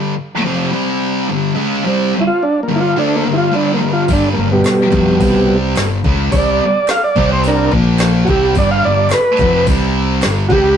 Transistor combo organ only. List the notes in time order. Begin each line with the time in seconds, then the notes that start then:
2.21 E4
2.27 F4
2.43 D4
2.63 A#3
2.76 E4
2.81 F4
2.99 D4
3.16 A#3
3.33 E4
3.37 F4
3.54 D4
3.74 A#3
3.93 F4
4.13 D4
4.33 A#3
4.52 B2 G3
6.32 C#5
6.37 D5
6.91 F5
7.04 D5
7.32 C5
7.47 D4 A#4
8.25 F#4
8.30 G4
8.58 D5
8.71 F5
8.85 D5
9.13 B4
10.49 F#4 G4